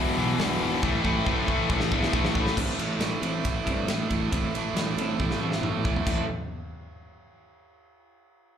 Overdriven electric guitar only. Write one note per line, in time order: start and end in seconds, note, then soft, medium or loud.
0.00 0.16 E2 loud
0.00 0.17 B2 loud
0.00 0.19 E3 loud
0.18 0.38 E2 medium
0.18 0.39 B2 medium
0.18 0.40 E3 loud
0.39 0.59 E2 loud
0.39 0.60 B2 loud
0.39 0.61 E3 loud
0.61 0.82 E2 medium
0.61 0.81 B2 medium
0.61 0.82 E3 loud
0.82 1.02 A2 medium
0.82 1.03 E3 loud
0.82 1.03 A3 loud
1.03 1.24 A2 loud
1.03 1.25 E3 loud
1.03 1.25 A3 loud
1.25 1.46 A2 medium
1.25 1.46 E3 medium
1.25 1.47 A3 loud
1.47 1.68 A2 medium
1.47 1.69 E3 medium
1.47 1.69 A3 loud
1.70 1.91 A2 loud
1.70 1.92 E3 medium
1.70 1.92 A3 loud
1.92 2.12 A2 medium
1.92 2.12 E3 medium
1.92 2.13 A3 medium
2.13 2.34 A2 medium
2.13 2.34 E3 loud
2.13 2.36 A3 loud
2.35 2.56 A2 medium
2.35 2.56 E3 medium
2.35 2.57 A3 medium
2.58 2.78 A2 medium
2.58 2.78 E3 loud
2.58 2.79 A3 loud
2.79 2.99 A2 medium
2.79 3.00 E3 medium
2.79 3.01 A3 medium
3.00 3.21 A2 medium
3.00 3.21 E3 medium
3.00 3.22 A3 medium
3.21 3.43 A2 loud
3.21 3.44 E3 loud
3.21 3.45 A3 loud
3.43 3.65 A2 medium
3.43 3.65 E3 medium
3.43 3.66 A3 medium
3.65 3.88 A2 medium
3.65 3.88 E3 loud
3.65 3.89 A3 loud
3.88 4.09 A2 medium
3.88 4.09 E3 medium
3.88 4.09 A3 medium
4.09 4.31 A2 medium
4.09 4.31 E3 medium
4.09 4.32 A3 medium
4.32 4.52 A2 loud
4.32 4.54 E3 loud
4.32 4.54 A3 loud
4.54 4.74 A2 medium
4.54 4.74 E3 medium
4.54 4.75 A3 medium
4.75 4.95 A2 medium
4.75 4.96 E3 medium
4.75 4.96 A3 medium
4.96 5.17 A2 medium
4.96 5.18 E3 loud
4.96 5.18 A3 loud
5.19 5.39 A2 medium
5.19 5.40 E3 medium
5.19 5.40 A3 medium
5.40 5.62 A2 medium
5.40 5.63 E3 medium
5.40 5.63 A3 loud
5.63 5.84 A2 medium
5.63 5.84 E3 medium
5.63 5.85 A3 medium
5.86 6.05 A2 medium
5.86 6.05 E3 loud
5.86 6.06 A3 loud
6.06 6.23 A2 loud
6.06 6.24 E3 loud
6.06 6.24 A3 loud